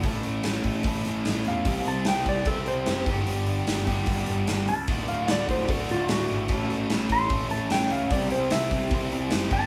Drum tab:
HH |oooooooo|oooooooo|oooooooo|oooooooo|
SD |--o---o-|--o---o-|--o---o-|--o---o-|
BD |o--oo---|o--oo--o|---oo---|o--oo---|

HH |oooooooo|oooooooo|
SD |--o---o-|--o---o-|
BD |o--oo---|o--oo--o|